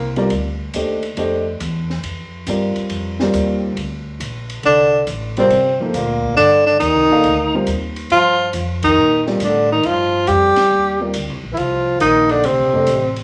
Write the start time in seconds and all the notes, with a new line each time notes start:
Already playing: C2 A#3
0.16 G3 C4 F4 A#4 D5, ride
0.30 D2, ride
0.74 D#2 A3 D4 G4 C5 D#5, hi-hat pedal, ride
1.03 ride
1.17 F2 A3 D4 G4 C5 D#5, ride
1.60 E2, hi-hat pedal, ride
1.90 snare
2.03 F2, ride
2.47 G2 G3 C4 F4 A#4 D5, hi-hat pedal, ride
2.76 muted upright bass stroke, ride
2.90 F2, ride
3.20 G3 C4 F4 A#4 D5, snare
3.33 D#2, hi-hat pedal, ride
3.77 D2, ride
4.20 A#1, hi-hat pedal, ride
4.50 ride
4.63 C2 D3 D4, ride
5.07 A1, hi-hat pedal, ride
5.37 C3 G3 C4 F4 A#4 D5, ride
5.50 G1, ride
5.80 F3 A#3 D#4 A4 C5
5.93 D2 A#2 A#3, hi-hat pedal, ride
6.24 kick
6.36 G2 D3 D4, ride
6.66 D3 D4
6.79 D#2 D#3 D#4, hi-hat pedal, ride
6.95 C2
7.10 A#1 A#3 D#4 A4 D5 F5
7.24 D2, ride
7.54 G3 C4 F4 A#4 C5
7.67 D#2, hi-hat pedal, ride
7.96 ride
8.10 G2 F3 F4, ride
8.53 F2, hi-hat pedal, ride
8.83 D#3 D#4, kick, ride
8.97 A#2
9.26 G3 C4 F4 A#4 D5, snare
9.40 A2 D3 D4, hi-hat pedal, ride
9.72 D#3 D#4
9.83 G2 F3 F4, ride
10.27 F2 G3 G4, hi-hat pedal, ride
10.56 muted upright bass stroke, snare, ride
10.71 D#2
11.00 G3 C4 F4 A#4 D5
11.14 D2, hi-hat pedal, ride
11.29 C2
11.44 A#1
11.52 E3 E4
11.56 C2 F3 F4, ride
12.00 A#1 D#3 D#4, hi-hat pedal, ride
12.29 D3 D4, ride
12.43 D2 C3 C4, ride
12.59 A#1
12.73 F1 A3 D4 G4 C5 D#5
12.87 A1, hi-hat pedal, ride
13.16 ride